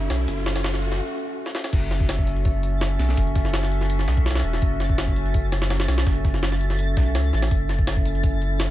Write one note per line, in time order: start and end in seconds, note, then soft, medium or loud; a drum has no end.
0.00 0.54 C#4 loud
0.00 0.54 F#4 medium
0.00 0.54 A4 medium
0.00 0.54 E5 loud
0.00 riser medium
0.10 0.27 B1 medium
0.10 snare loud
0.10 closed hi-hat medium
0.10 shaker medium
0.28 1.01 F#1 medium
0.28 kick loud
0.28 closed hi-hat medium
0.28 shaker medium
0.38 closed hi-hat soft
0.46 snare loud
0.46 snare medium
0.46 closed hi-hat medium
0.46 shaker medium
0.56 1.17 C#4 loud
0.56 1.17 F#4 medium
0.56 1.17 A4 medium
0.56 1.17 E5 loud
0.56 snare loud
0.56 closed hi-hat medium
0.64 snare loud
0.64 closed hi-hat medium
0.64 shaker medium
0.74 snare soft
0.82 closed hi-hat medium
0.82 shaker medium
0.92 snare soft
0.92 closed hi-hat soft
1.46 snare medium
1.55 snare medium
1.64 snare medium
1.73 2.98 F#1 medium
1.73 8.71 A6 medium
1.73 kick loud
1.73 closed hi-hat medium
1.73 crash medium
1.73 shaker medium
1.91 snare soft
1.91 closed hi-hat medium
1.91 shaker medium
2.00 2.61 C#4 loud
2.00 2.61 F#4 medium
2.00 2.61 A4 medium
2.00 2.61 E5 loud
2.00 kick medium
2.09 snare loud
2.09 closed hi-hat medium
2.09 open hi-hat medium
2.18 kick loud
2.27 closed hi-hat medium
2.27 shaker medium
2.37 closed hi-hat soft
2.45 kick loud
2.45 closed hi-hat medium
2.45 shaker medium
2.63 3.43 C#4 loud
2.63 3.43 F#4 medium
2.63 3.43 A4 medium
2.63 3.43 E5 loud
2.63 closed hi-hat medium
2.63 shaker medium
2.81 snare loud
2.81 closed hi-hat medium
2.81 shaker medium
2.99 3.16 B1 medium
2.99 snare soft
2.99 closed hi-hat medium
2.99 shaker medium
3.09 snare soft
3.17 4.06 F#1 medium
3.17 kick loud
3.17 closed hi-hat medium
3.17 shaker medium
3.27 closed hi-hat soft
3.35 kick loud
3.35 snare medium
3.35 closed hi-hat medium
3.35 shaker medium
3.44 4.06 C#4 loud
3.44 4.06 F#4 medium
3.44 4.06 A4 medium
3.44 4.06 E5 loud
3.44 snare soft
3.54 snare loud
3.54 closed hi-hat medium
3.54 shaker medium
3.63 snare soft
3.72 closed hi-hat medium
3.72 shaker medium
3.81 snare soft
3.81 closed hi-hat soft
3.90 closed hi-hat medium
3.90 shaker medium
3.99 snare soft
4.08 4.43 B1 medium
4.08 4.87 C#4 loud
4.08 4.87 F#4 medium
4.08 4.87 A4 medium
4.08 4.87 E5 loud
4.08 snare loud
4.08 open hi-hat medium
4.08 shaker medium
4.17 kick medium
4.17 closed hi-hat soft
4.26 snare medium
4.26 closed hi-hat medium
4.26 shaker medium
4.31 snare medium
4.31 closed hi-hat medium
4.35 snare medium
4.35 closed hi-hat medium
4.40 snare medium
4.40 closed hi-hat medium
4.44 4.60 E1 medium
4.44 closed hi-hat medium
4.44 shaker medium
4.53 snare soft
4.62 5.87 F#1 loud
4.62 kick loud
4.62 closed hi-hat medium
4.62 shaker medium
4.80 snare soft
4.80 snare medium
4.80 closed hi-hat medium
4.80 shaker medium
4.89 5.50 C#4 medium
4.89 5.50 F#4 medium
4.89 5.50 A4 medium
4.89 5.50 E5 loud
4.89 kick loud
4.98 snare loud
4.98 closed hi-hat medium
4.98 open hi-hat medium
5.08 kick loud
5.16 closed hi-hat medium
5.16 shaker medium
5.26 closed hi-hat soft
5.34 kick loud
5.34 closed hi-hat medium
5.34 shaker medium
5.52 6.32 C#4 loud
5.52 6.32 F#4 medium
5.52 6.32 A4 medium
5.52 6.32 E5 loud
5.52 snare loud
5.52 closed hi-hat medium
5.52 shaker medium
5.62 snare loud
5.62 closed hi-hat medium
5.70 snare loud
5.70 closed hi-hat medium
5.70 shaker medium
5.80 snare loud
5.80 closed hi-hat medium
5.88 6.05 B1 medium
5.88 snare loud
5.88 snare soft
5.88 closed hi-hat medium
5.88 shaker medium
5.98 snare loud
5.98 closed hi-hat medium
6.06 6.96 F#1 medium
6.06 kick loud
6.06 snare loud
6.06 closed hi-hat medium
6.06 open hi-hat medium
6.25 kick loud
6.25 snare medium
6.25 closed hi-hat medium
6.25 shaker medium
6.34 6.95 C#4 loud
6.34 6.95 F#4 medium
6.34 6.95 A4 medium
6.34 6.95 E5 loud
6.34 snare soft
6.43 snare loud
6.43 closed hi-hat medium
6.43 shaker medium
6.52 snare soft
6.61 closed hi-hat medium
6.61 shaker medium
6.70 snare soft
6.70 closed hi-hat soft
6.79 closed hi-hat medium
6.79 shaker medium
6.97 7.17 B1 medium
6.97 7.50 C#4 loud
6.97 7.50 F#4 medium
6.97 7.50 A4 medium
6.97 7.50 E5 loud
6.97 kick loud
6.97 snare loud
6.97 closed hi-hat medium
6.97 shaker medium
7.07 closed hi-hat soft
7.15 7.31 C#2 medium
7.15 snare loud
7.15 closed hi-hat medium
7.15 shaker medium
7.33 7.50 A1 medium
7.33 snare soft
7.33 closed hi-hat medium
7.33 shaker medium
7.42 snare loud
7.42 closed hi-hat medium
7.51 8.71 F#1 medium
7.51 kick loud
7.51 closed hi-hat medium
7.51 shaker medium
7.69 snare soft
7.69 snare medium
7.69 closed hi-hat medium
7.69 shaker medium
7.79 8.40 C#4 loud
7.79 8.40 E4 medium
7.79 8.40 A4 medium
7.79 8.39 E5 loud
7.79 kick loud
7.87 snare loud
7.87 closed hi-hat medium
7.87 open hi-hat medium
7.97 kick loud
8.05 closed hi-hat medium
8.05 shaker medium
8.15 closed hi-hat soft
8.23 kick loud
8.23 closed hi-hat medium
8.23 shaker medium
8.42 8.71 C#4 loud
8.42 8.71 E4 medium
8.42 8.71 A4 medium
8.42 8.71 E5 loud
8.42 closed hi-hat medium
8.42 shaker medium
8.60 snare loud
8.60 closed hi-hat medium
8.60 shaker medium